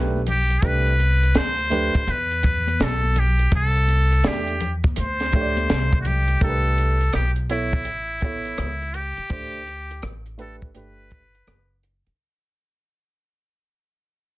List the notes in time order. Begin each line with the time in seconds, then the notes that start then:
Already playing: B1 A3 D4 G4 B4
0.16 high conga, shaker
0.27 G4, closed hi-hat, low conga, shaker
0.50 closed hi-hat, shaker
0.62 C2 A3 D4 G4 B4, kick, closed hi-hat, shaker
0.86 closed hi-hat, shaker
0.99 closed hi-hat, high conga, shaker
1.22 closed hi-hat, shaker
1.35 D2 C5, snare, closed hi-hat, shaker
1.58 closed hi-hat, shaker
1.70 A3 D4 G4 B4, closed hi-hat, low conga, shaker
1.95 muted upright bass stroke, kick, closed hi-hat, shaker
2.07 E2 B4, closed hi-hat, shaker
2.31 closed hi-hat, shaker
2.43 kick, closed hi-hat, low conga, shaker
2.67 closed hi-hat, high conga, shaker
2.79 B1 A4, snare, closed hi-hat, shaker
3.04 high conga, shaker
3.16 G4, closed hi-hat, low conga, shaker
3.39 closed hi-hat, shaker
3.51 C2, kick, closed hi-hat, shaker
3.55 A4
3.74 closed hi-hat, shaker
3.88 closed hi-hat, high conga, shaker
4.11 closed hi-hat, shaker
4.24 E2 A3 D4 G4 D5, snare, closed hi-hat, shaker
4.47 closed hi-hat, shaker
4.60 closed hi-hat, low conga, shaker
4.84 kick, closed hi-hat, high conga, shaker
4.96 D2 C5, closed hi-hat, shaker
5.20 snare, closed hi-hat, shaker
5.32 A3 D4 G4 C#5, kick, closed hi-hat, low conga, shaker
5.41 D5
5.57 closed hi-hat, high conga, shaker
5.69 C2, snare, closed hi-hat, shaker
5.93 kick, closed hi-hat, high conga, shaker
6.01 F#4, closed hi-hat
6.06 G4, low conga, shaker
6.28 closed hi-hat, shaker
6.41 C2 A3 D4 G4 A4 A#4, kick, closed hi-hat
6.49 B4
6.78 closed hi-hat
7.01 closed hi-hat
7.13 B1 G4, cross-stick, closed hi-hat
7.36 closed hi-hat
7.49 B3 E4 A4 C#5, closed hi-hat
7.73 kick, closed hi-hat
7.85 A1, closed hi-hat
8.21 B3 E4 A4 C#5, kick, closed hi-hat
8.45 closed hi-hat
8.58 C#2, cross-stick, closed hi-hat
8.82 closed hi-hat
8.94 G4, closed hi-hat
9.17 muted upright bass stroke, closed hi-hat
9.29 D2 A3 D4 G4 C5, kick, closed hi-hat
9.67 closed hi-hat
9.91 closed hi-hat
10.02 A1, cross-stick, closed hi-hat
10.26 closed hi-hat
10.38 A3 D4 G4 A4 B4, closed hi-hat
10.62 kick, closed hi-hat
10.74 G1 A3 D4 G4 B4, closed hi-hat
11.11 kick, closed hi-hat
11.35 closed hi-hat
11.47 F#1, cross-stick, closed hi-hat
11.83 closed hi-hat
12.07 muted upright bass stroke, closed hi-hat